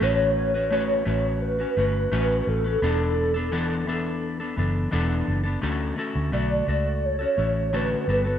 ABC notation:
X:1
M:4/4
L:1/16
Q:1/4=86
K:D
V:1 name="Soft synth lead"
c4 c4 B6 A2- | A12 z4 | z4 d4 c4 B2 B2 |]
V:2 name="Clean electric guitar"
[A,CFB]3 [CFB] [A,CFB]2 [A,CFB]3 [CFB] [A,CFB]2 [A,CFB]3 [CFB] | [E,B,DA]3 [B,DA] [E,B,DA]2 [E,B,DA]3 [B,DA] [E,B,DA]2 [E,B,DA]3 [B,DA] | [D,A,CFA]2 [A,CFA]2 [D,A,FA]2 [A,FA]3 [CFA] [A,CFA]2 [D,A,CFA]2 [G,B,FA] [B,FA] |]
V:3 name="Fingered electric bass" clef=bass
A,,,6 A,,,4 G,,,2 A,,,2 A,,,2 | E,,,8- E,,,2 F,,,2 E,,,2 F,,,2 | D,,2 z D,, B,,,2 C,,4 A,,,4 G,,,2 |]